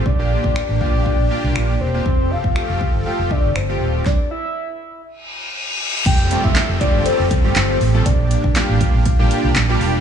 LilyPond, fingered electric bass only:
\new Staff \with { instrumentName = "Fingered electric bass" } { \clef bass \time 4/4 \key f \major \tempo 4 = 120 bes,,8. bes,,16 r16 a,,16 r16 bes,,16 r16 bes,,16 r16 c,16 bes,,8 e,,8 | f,,8. g,,16 r16 f,,16 r16 g,,16 r16 f,,16 r16 g,,16 g,,8 ees,,8 | r1 | f,,8. g,,16 r16 f,,16 r16 g,,16 r16 f,,16 r16 g,,16 g,,8 a,,8 |
bes,,8. bes,,16 r16 a,,16 r16 bes,,16 r16 bes,,16 r16 c,16 bes,,8 e,,8 | }